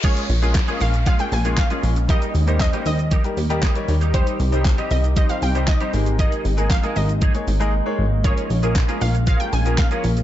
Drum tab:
CC |x---------------|----------------|----------------|----------------|
HH |xxoxxxoxxxoxxxox|xxoxxxoxxxoxxxox|xxoxxxoxxxoxxxox|xxoxxxoxxxox----|
SH |xxxxxxxxxxxxxxxx|xxxxxxxxxxxxxxxx|xxxxxxxxxxxxxxxx|xxxxxxxxxxxx----|
CP |----x-------x---|----x-------x---|----x-------x---|----x-----------|
SD |----o-------o---|----o-------o---|----o-------o---|----o-----------|
BD |o---o---o---o---|o---o---o---o---|o---o---o---o---|o---o---o-------|

CC |----------------|
HH |xxoxxxoxxxoxxxox|
SH |xxxxxxxxxxxxxxxx|
CP |----x-------x---|
SD |----o-------o---|
BD |o---o---o---o---|